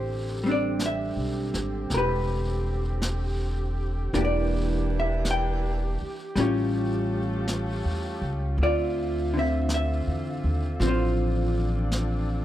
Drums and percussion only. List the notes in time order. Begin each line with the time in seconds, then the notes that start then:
0.79 brush sweep, snare, hi-hat pedal
1.54 snare
1.90 brush sweep, snare
3.02 brush sweep, snare, hi-hat pedal
4.14 brush sweep, snare
5.25 brush sweep, snare, hi-hat pedal
6.36 brush sweep, snare
7.48 brush sweep, snare, hi-hat pedal
8.58 brush sweep
9.69 brush sweep, snare, hi-hat pedal
10.80 brush sweep, snare
11.92 brush sweep, snare, hi-hat pedal